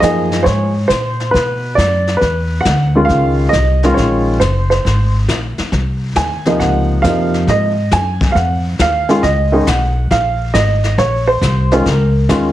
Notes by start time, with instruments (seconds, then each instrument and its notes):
0.00 upright bass F#2, grand piano F3 A#3 D#4 G#4 D#5, kick, snare, hi-hat pedal
0.32 snare
0.43 upright bass G#2, grand piano C5 C#5, brush sweep, kick, snare
0.88 upright bass A#2, grand piano C5, kick, snare, hi-hat pedal
1.20 snare
1.31 upright bass B2, grand piano B4, brush sweep, kick, snare
1.75 upright bass F#2, grand piano D5, kick, snare, hi-hat pedal
2.07 snare
2.17 grand piano B4
2.21 upright bass E2, brush sweep, kick, snare
2.61 grand piano F#5
2.65 upright bass D2, kick, snare, hi-hat pedal
2.95 grand piano D#3 G#3 C#4 F4
3.05 upright bass C#2, grand piano F5
3.09 brush sweep, kick, snare
3.49 upright bass C2, grand piano D#5, snare
3.53 kick, hi-hat pedal
3.83 grand piano D#3 G#3 C#4 F4, snare
3.94 upright bass A#1, grand piano C#5, brush sweep, kick, snare
4.40 upright bass F#1, grand piano C5, kick, snare, hi-hat pedal
4.70 grand piano C5, snare
4.85 upright bass G#1, brush sweep, kick, snare
5.28 upright bass A#1, kick, snare, hi-hat pedal
5.58 muted upright bass stroke, snare
5.72 upright bass C2, brush sweep, kick, snare
6.16 upright bass D#2, grand piano G#5, kick, snare, hi-hat pedal
6.45 grand piano C3 F3 A#3 D#4, snare
6.60 upright bass C#2, grand piano F#5, brush sweep, kick, snare
7.02 upright bass F2, grand piano C3 F3 A#3 D#4 F5, kick, snare, hi-hat pedal
7.34 snare
7.47 upright bass G#2, grand piano D#5, brush sweep, kick, snare
7.91 upright bass F#2, grand piano G#5, kick, snare, hi-hat pedal
8.21 kick, snare
8.32 upright bass F2, grand piano F5 F#5, brush sweep, kick, snare
8.79 upright bass D#2, grand piano F5, kick, snare, hi-hat pedal
9.09 grand piano D#3 G#3 C#4 F4, snare
9.23 upright bass C#2, grand piano D#5, brush sweep, kick, snare
9.52 grand piano D#3 G#3 C#4 D#4
9.67 upright bass B1, grand piano F#5, kick, snare, hi-hat pedal
10.11 upright bass A#1, grand piano F5, brush sweep, kick, snare
10.54 upright bass G#1, grand piano D#5, kick, snare, hi-hat pedal
10.84 snare
10.98 upright bass A#1, grand piano C#5, brush sweep, kick, snare
11.27 grand piano C5
11.41 upright bass C2, kick, snare, hi-hat pedal
11.71 grand piano D#3 G#3 C#4 F4 C5, snare
11.86 upright bass C#2, grand piano A#4, brush sweep, kick, snare
12.29 upright bass D#2, grand piano D#3 G#3 C#4 F4, kick, snare, hi-hat pedal